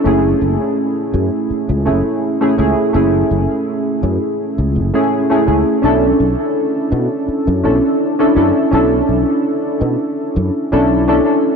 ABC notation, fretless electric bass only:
X:1
M:4/4
L:1/16
Q:"Swing 16ths" 1/4=83
K:F#m
V:1 name="Fretless electric bass" clef=bass
F,,, z F,,, z3 F,, z2 C,, F,,, z3 C,, z | F,,, z F,,, z3 F,, z2 C,, F,,, z3 C,, z | B,,, z B,,, z3 B,, z2 F,, B,,, z3 F,, z | B,,, z B,,, z3 B,, z2 F,, z B,,,3 z2 |]